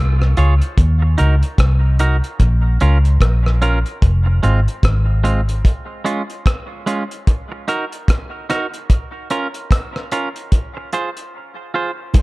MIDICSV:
0, 0, Header, 1, 5, 480
1, 0, Start_track
1, 0, Tempo, 811908
1, 1420, Time_signature, 4, 2, 24, 8
1, 7226, End_track
2, 0, Start_track
2, 0, Title_t, "Clean electric guitar"
2, 0, Program_c, 0, 27
2, 221, Note_on_c, 0, 65, 94
2, 224, Note_on_c, 0, 68, 86
2, 228, Note_on_c, 0, 73, 88
2, 315, Note_off_c, 0, 65, 0
2, 317, Note_off_c, 0, 68, 0
2, 319, Note_off_c, 0, 73, 0
2, 697, Note_on_c, 0, 63, 86
2, 700, Note_on_c, 0, 66, 72
2, 704, Note_on_c, 0, 70, 88
2, 793, Note_off_c, 0, 63, 0
2, 795, Note_off_c, 0, 66, 0
2, 797, Note_off_c, 0, 70, 0
2, 1180, Note_on_c, 0, 63, 70
2, 1184, Note_on_c, 0, 66, 77
2, 1185, Note_on_c, 0, 70, 77
2, 1275, Note_off_c, 0, 63, 0
2, 1276, Note_off_c, 0, 66, 0
2, 1277, Note_off_c, 0, 70, 0
2, 1661, Note_on_c, 0, 61, 73
2, 1665, Note_on_c, 0, 65, 92
2, 1668, Note_on_c, 0, 70, 76
2, 1755, Note_off_c, 0, 61, 0
2, 1757, Note_off_c, 0, 65, 0
2, 1759, Note_off_c, 0, 70, 0
2, 2138, Note_on_c, 0, 61, 89
2, 2142, Note_on_c, 0, 65, 87
2, 2144, Note_on_c, 0, 70, 103
2, 2233, Note_off_c, 0, 61, 0
2, 2235, Note_off_c, 0, 65, 0
2, 2237, Note_off_c, 0, 70, 0
2, 2619, Note_on_c, 0, 56, 79
2, 2622, Note_on_c, 0, 60, 86
2, 2624, Note_on_c, 0, 65, 87
2, 2714, Note_off_c, 0, 56, 0
2, 2715, Note_off_c, 0, 60, 0
2, 2716, Note_off_c, 0, 65, 0
2, 3096, Note_on_c, 0, 56, 77
2, 3097, Note_on_c, 0, 60, 73
2, 3100, Note_on_c, 0, 65, 83
2, 3192, Note_off_c, 0, 56, 0
2, 3193, Note_off_c, 0, 60, 0
2, 3194, Note_off_c, 0, 65, 0
2, 3574, Note_on_c, 0, 56, 78
2, 3577, Note_on_c, 0, 61, 85
2, 3582, Note_on_c, 0, 65, 92
2, 3671, Note_off_c, 0, 56, 0
2, 3673, Note_off_c, 0, 61, 0
2, 3675, Note_off_c, 0, 65, 0
2, 4058, Note_on_c, 0, 56, 73
2, 4062, Note_on_c, 0, 61, 77
2, 4065, Note_on_c, 0, 65, 85
2, 4153, Note_off_c, 0, 56, 0
2, 4155, Note_off_c, 0, 61, 0
2, 4157, Note_off_c, 0, 65, 0
2, 4539, Note_on_c, 0, 63, 67
2, 4542, Note_on_c, 0, 66, 79
2, 4545, Note_on_c, 0, 70, 87
2, 4634, Note_off_c, 0, 63, 0
2, 4635, Note_off_c, 0, 66, 0
2, 4637, Note_off_c, 0, 70, 0
2, 5023, Note_on_c, 0, 63, 80
2, 5026, Note_on_c, 0, 66, 85
2, 5030, Note_on_c, 0, 70, 84
2, 5116, Note_off_c, 0, 63, 0
2, 5117, Note_off_c, 0, 66, 0
2, 5119, Note_off_c, 0, 70, 0
2, 5502, Note_on_c, 0, 61, 73
2, 5505, Note_on_c, 0, 65, 76
2, 5506, Note_on_c, 0, 70, 82
2, 5595, Note_off_c, 0, 61, 0
2, 5597, Note_off_c, 0, 65, 0
2, 5597, Note_off_c, 0, 70, 0
2, 5983, Note_on_c, 0, 61, 72
2, 5984, Note_on_c, 0, 65, 78
2, 5989, Note_on_c, 0, 70, 76
2, 6076, Note_off_c, 0, 61, 0
2, 6076, Note_off_c, 0, 65, 0
2, 6079, Note_off_c, 0, 70, 0
2, 6462, Note_on_c, 0, 65, 67
2, 6464, Note_on_c, 0, 68, 74
2, 6468, Note_on_c, 0, 72, 81
2, 6555, Note_off_c, 0, 65, 0
2, 6556, Note_off_c, 0, 68, 0
2, 6558, Note_off_c, 0, 72, 0
2, 6942, Note_on_c, 0, 65, 71
2, 6945, Note_on_c, 0, 68, 70
2, 6949, Note_on_c, 0, 72, 75
2, 7035, Note_off_c, 0, 65, 0
2, 7037, Note_off_c, 0, 68, 0
2, 7039, Note_off_c, 0, 72, 0
2, 7226, End_track
3, 0, Start_track
3, 0, Title_t, "Fingered electric bass"
3, 0, Program_c, 1, 33
3, 0, Note_on_c, 1, 36, 86
3, 197, Note_off_c, 1, 36, 0
3, 224, Note_on_c, 1, 37, 95
3, 353, Note_off_c, 1, 37, 0
3, 463, Note_on_c, 1, 39, 85
3, 679, Note_off_c, 1, 39, 0
3, 709, Note_on_c, 1, 37, 78
3, 836, Note_off_c, 1, 37, 0
3, 941, Note_on_c, 1, 36, 87
3, 1301, Note_off_c, 1, 36, 0
3, 1423, Note_on_c, 1, 34, 94
3, 1639, Note_off_c, 1, 34, 0
3, 1666, Note_on_c, 1, 37, 83
3, 1880, Note_off_c, 1, 37, 0
3, 1900, Note_on_c, 1, 34, 91
3, 2260, Note_off_c, 1, 34, 0
3, 2383, Note_on_c, 1, 29, 96
3, 2599, Note_off_c, 1, 29, 0
3, 2625, Note_on_c, 1, 32, 81
3, 2753, Note_off_c, 1, 32, 0
3, 2861, Note_on_c, 1, 32, 95
3, 3316, Note_off_c, 1, 32, 0
3, 7226, End_track
4, 0, Start_track
4, 0, Title_t, "Muted clean electric guitar strokes"
4, 605, Note_on_c, 9, 29, 38
4, 664, Note_off_c, 9, 29, 0
4, 2520, Note_on_c, 9, 29, 41
4, 2579, Note_off_c, 9, 29, 0
4, 4444, Note_on_c, 9, 29, 47
4, 4503, Note_off_c, 9, 29, 0
4, 6367, Note_on_c, 9, 29, 40
4, 6426, Note_off_c, 9, 29, 0
4, 7226, End_track
5, 0, Start_track
5, 0, Title_t, "Drums"
5, 128, Note_on_c, 9, 37, 65
5, 187, Note_off_c, 9, 37, 0
5, 218, Note_on_c, 9, 42, 59
5, 278, Note_off_c, 9, 42, 0
5, 364, Note_on_c, 9, 42, 54
5, 423, Note_off_c, 9, 42, 0
5, 459, Note_on_c, 9, 36, 113
5, 460, Note_on_c, 9, 42, 92
5, 518, Note_off_c, 9, 36, 0
5, 519, Note_off_c, 9, 42, 0
5, 698, Note_on_c, 9, 42, 63
5, 757, Note_off_c, 9, 42, 0
5, 844, Note_on_c, 9, 42, 55
5, 903, Note_off_c, 9, 42, 0
5, 936, Note_on_c, 9, 36, 113
5, 938, Note_on_c, 9, 42, 79
5, 946, Note_on_c, 9, 37, 109
5, 995, Note_off_c, 9, 36, 0
5, 997, Note_off_c, 9, 42, 0
5, 1006, Note_off_c, 9, 37, 0
5, 1178, Note_on_c, 9, 42, 68
5, 1237, Note_off_c, 9, 42, 0
5, 1324, Note_on_c, 9, 42, 52
5, 1383, Note_off_c, 9, 42, 0
5, 1417, Note_on_c, 9, 36, 103
5, 1417, Note_on_c, 9, 42, 82
5, 1476, Note_off_c, 9, 42, 0
5, 1477, Note_off_c, 9, 36, 0
5, 1657, Note_on_c, 9, 42, 60
5, 1717, Note_off_c, 9, 42, 0
5, 1803, Note_on_c, 9, 42, 46
5, 1862, Note_off_c, 9, 42, 0
5, 1895, Note_on_c, 9, 36, 82
5, 1899, Note_on_c, 9, 42, 85
5, 1902, Note_on_c, 9, 37, 100
5, 1954, Note_off_c, 9, 36, 0
5, 1958, Note_off_c, 9, 42, 0
5, 1961, Note_off_c, 9, 37, 0
5, 2048, Note_on_c, 9, 37, 61
5, 2107, Note_off_c, 9, 37, 0
5, 2139, Note_on_c, 9, 42, 62
5, 2198, Note_off_c, 9, 42, 0
5, 2281, Note_on_c, 9, 42, 47
5, 2340, Note_off_c, 9, 42, 0
5, 2378, Note_on_c, 9, 36, 120
5, 2379, Note_on_c, 9, 42, 82
5, 2437, Note_off_c, 9, 36, 0
5, 2438, Note_off_c, 9, 42, 0
5, 2620, Note_on_c, 9, 42, 61
5, 2679, Note_off_c, 9, 42, 0
5, 2767, Note_on_c, 9, 42, 47
5, 2826, Note_off_c, 9, 42, 0
5, 2856, Note_on_c, 9, 36, 95
5, 2858, Note_on_c, 9, 42, 81
5, 2867, Note_on_c, 9, 37, 99
5, 2915, Note_off_c, 9, 36, 0
5, 2917, Note_off_c, 9, 42, 0
5, 2926, Note_off_c, 9, 37, 0
5, 3102, Note_on_c, 9, 42, 80
5, 3161, Note_off_c, 9, 42, 0
5, 3244, Note_on_c, 9, 42, 53
5, 3304, Note_off_c, 9, 42, 0
5, 3339, Note_on_c, 9, 36, 106
5, 3341, Note_on_c, 9, 42, 74
5, 3398, Note_off_c, 9, 36, 0
5, 3400, Note_off_c, 9, 42, 0
5, 3582, Note_on_c, 9, 42, 64
5, 3641, Note_off_c, 9, 42, 0
5, 3723, Note_on_c, 9, 42, 46
5, 3782, Note_off_c, 9, 42, 0
5, 3818, Note_on_c, 9, 36, 100
5, 3822, Note_on_c, 9, 42, 85
5, 3825, Note_on_c, 9, 37, 97
5, 3877, Note_off_c, 9, 36, 0
5, 3881, Note_off_c, 9, 42, 0
5, 3884, Note_off_c, 9, 37, 0
5, 4062, Note_on_c, 9, 42, 69
5, 4122, Note_off_c, 9, 42, 0
5, 4205, Note_on_c, 9, 42, 51
5, 4264, Note_off_c, 9, 42, 0
5, 4300, Note_on_c, 9, 36, 111
5, 4300, Note_on_c, 9, 42, 84
5, 4359, Note_off_c, 9, 36, 0
5, 4359, Note_off_c, 9, 42, 0
5, 4541, Note_on_c, 9, 42, 66
5, 4600, Note_off_c, 9, 42, 0
5, 4685, Note_on_c, 9, 42, 57
5, 4744, Note_off_c, 9, 42, 0
5, 4778, Note_on_c, 9, 36, 106
5, 4781, Note_on_c, 9, 42, 81
5, 4789, Note_on_c, 9, 37, 94
5, 4837, Note_off_c, 9, 36, 0
5, 4840, Note_off_c, 9, 42, 0
5, 4848, Note_off_c, 9, 37, 0
5, 5024, Note_on_c, 9, 42, 68
5, 5029, Note_on_c, 9, 37, 68
5, 5083, Note_off_c, 9, 42, 0
5, 5088, Note_off_c, 9, 37, 0
5, 5165, Note_on_c, 9, 42, 49
5, 5224, Note_off_c, 9, 42, 0
5, 5260, Note_on_c, 9, 36, 100
5, 5260, Note_on_c, 9, 42, 81
5, 5319, Note_off_c, 9, 36, 0
5, 5319, Note_off_c, 9, 42, 0
5, 5499, Note_on_c, 9, 42, 64
5, 5558, Note_off_c, 9, 42, 0
5, 5642, Note_on_c, 9, 42, 47
5, 5701, Note_off_c, 9, 42, 0
5, 5738, Note_on_c, 9, 36, 90
5, 5744, Note_on_c, 9, 42, 75
5, 5747, Note_on_c, 9, 37, 100
5, 5798, Note_off_c, 9, 36, 0
5, 5803, Note_off_c, 9, 42, 0
5, 5806, Note_off_c, 9, 37, 0
5, 5888, Note_on_c, 9, 37, 62
5, 5947, Note_off_c, 9, 37, 0
5, 5980, Note_on_c, 9, 42, 66
5, 6040, Note_off_c, 9, 42, 0
5, 6123, Note_on_c, 9, 42, 46
5, 6183, Note_off_c, 9, 42, 0
5, 6219, Note_on_c, 9, 42, 89
5, 6220, Note_on_c, 9, 36, 109
5, 6278, Note_off_c, 9, 42, 0
5, 6279, Note_off_c, 9, 36, 0
5, 6459, Note_on_c, 9, 42, 61
5, 6518, Note_off_c, 9, 42, 0
5, 6602, Note_on_c, 9, 42, 55
5, 6661, Note_off_c, 9, 42, 0
5, 7175, Note_on_c, 9, 64, 78
5, 7179, Note_on_c, 9, 42, 86
5, 7180, Note_on_c, 9, 36, 112
5, 7226, Note_off_c, 9, 36, 0
5, 7226, Note_off_c, 9, 42, 0
5, 7226, Note_off_c, 9, 64, 0
5, 7226, End_track
0, 0, End_of_file